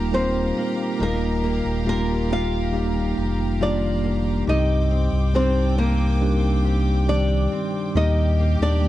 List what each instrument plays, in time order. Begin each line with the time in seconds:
Already playing: sub bass D#1, steel-string acoustic guitar D#3 A#3 F4 G4, tine electric piano G3 A#3 D#4 F4 A#4, violin section G4 F5 A#5, nylon-string guitar A#4
0.11 tine electric piano G3 A#3 D#4 F4 A#4, nylon-string guitar C4 C5, steel-string acoustic guitar F4
0.57 steel-string acoustic guitar A#3
0.98 sub bass D#1, tine electric piano A#2 G3 A#3 D#4 F4 A#4, steel-string acoustic guitar D#3
1.02 nylon-string guitar A#3 A#4
1.44 steel-string acoustic guitar A#3
1.65 sub bass D#1
1.85 tine electric piano G3 A#3 D#4 F4 G4, nylon-string guitar A#3 A#4, steel-string acoustic guitar F4
2.30 nylon-string guitar F4 F5, steel-string acoustic guitar G4
2.72 tine electric piano G3 A#3 D#4 F4 G4, steel-string acoustic guitar F4
3.17 sub bass F1, steel-string acoustic guitar G4
3.60 tine electric piano D#3 G3 A#3 F4 G4, nylon-string guitar D4 D5, steel-string acoustic guitar F4
4.04 steel-string acoustic guitar A#3
4.47 sub bass C2, tine electric piano G2 G3 C4 D#4 G4, steel-string acoustic guitar C3, violin section C4 G5 D6, nylon-string guitar D#4 D#5
4.91 steel-string acoustic guitar C4
5.12 sub bass C2
5.34 tine electric piano G3 C4 D4 D#4 G4, nylon-string guitar C4 C5, steel-string acoustic guitar D4
5.78 nylon-string guitar A#3 A#4, steel-string acoustic guitar G4
6.21 tine electric piano G3 C4 D4 D#4 G4, steel-string acoustic guitar D4
6.65 steel-string acoustic guitar G4
7.07 tine electric piano D#3 G3 C4 D4 G4, steel-string acoustic guitar D4, nylon-string guitar D4 D5
7.52 steel-string acoustic guitar C4
7.95 sub bass D#2, tine electric piano A#2 G3 A#3 D#4 G4, steel-string acoustic guitar D#3, nylon-string guitar D#4 D#5, violin section G4 G5 D6
8.39 steel-string acoustic guitar A#3
8.60 sub bass D#2, nylon-string guitar D4 D5
8.82 tine electric piano D#3 G3 A#3 G4